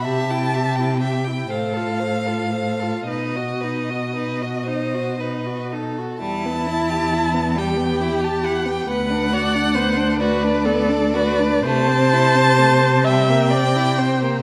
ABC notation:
X:1
M:6/8
L:1/16
Q:3/8=42
K:Em
V:1 name="Violin"
a4 g2 =f6 | ^d8- d2 z2 | a6 g3 a f g | f6 d6 |
a6 g6 |]
V:2 name="Viola"
G E G E G E A =F A F A F | ^D F D F D F D F D F D F | E6 G6 | B2 d2 c2 B2 A2 B2 |
c6 e2 d2 c2 |]
V:3 name="Violin"
e g e g e g c A c A c A | B ^d B d B d c2 B2 A2 | G, B, E G E B, G, B, E G E B, | B, D F D B, D F D B, D F D |
A, C E C A, C G, _B, C E C B, |]
V:4 name="Cello" clef=bass
C,6 A,,6 | B,,12 | E,,12 | D,,12 |
C,12 |]